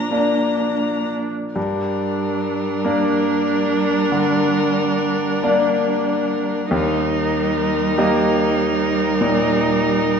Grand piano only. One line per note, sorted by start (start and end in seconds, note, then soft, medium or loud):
0.00 0.99 F3 soft
0.11 1.51 A#3 soft
0.11 1.52 D4 soft
0.11 1.52 D5 soft
1.56 2.82 G2 soft
2.85 4.08 A#3 soft
2.85 4.09 D4 soft
2.85 4.09 D5 soft
4.12 6.21 D3 soft
5.43 6.68 A#3 soft
5.43 6.68 D4 soft
5.43 6.68 D5 soft
6.71 7.93 D#2 soft
7.98 9.17 A#3 soft
7.98 9.17 G4 soft
7.98 9.17 D#5 soft
9.21 10.20 A#2 soft